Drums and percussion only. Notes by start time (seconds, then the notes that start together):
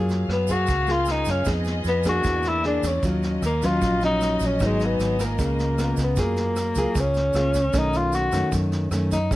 0.09 snare, shaker
0.29 cross-stick, snare
0.47 kick, snare, shaker
0.67 kick, snare, shaker
0.87 snare, shaker
1.05 cross-stick, snare, shaker
1.25 kick, snare, shaker
1.45 kick, cross-stick, snare, shaker
1.65 snare, shaker
1.84 snare, shaker
2.03 kick, cross-stick, snare, shaker
2.23 kick, snare, shaker
2.43 snare, shaker
2.64 cross-stick, snare
2.83 kick, snare, shaker
3.02 kick, snare, shaker
3.23 snare, shaker
3.42 cross-stick, snare, shaker
3.62 kick, snare, shaker
3.81 kick, snare, shaker
4.01 snare, shaker
4.21 cross-stick, snare, shaker
4.40 kick, snare, shaker
4.59 kick, cross-stick, snare, shaker
4.80 snare, shaker
5.00 snare, shaker
5.19 kick, cross-stick, snare, shaker
5.39 kick, snare, shaker
5.59 snare, shaker
5.78 cross-stick, snare, shaker
5.97 kick, snare, shaker
6.16 kick, snare, shaker
6.36 snare, shaker
6.56 cross-stick, snare, shaker
6.75 kick, snare, shaker
6.95 kick, snare, shaker
7.14 snare, shaker
7.33 cross-stick, snare, shaker
7.54 kick, snare, shaker
7.73 kick, cross-stick, snare, shaker
7.93 snare, shaker
8.12 snare, shaker
8.32 kick, cross-stick, snare, shaker
8.52 kick, snare, shaker
8.72 snare, shaker
8.91 cross-stick, snare, shaker
9.11 kick, snare, shaker
9.31 kick, snare, shaker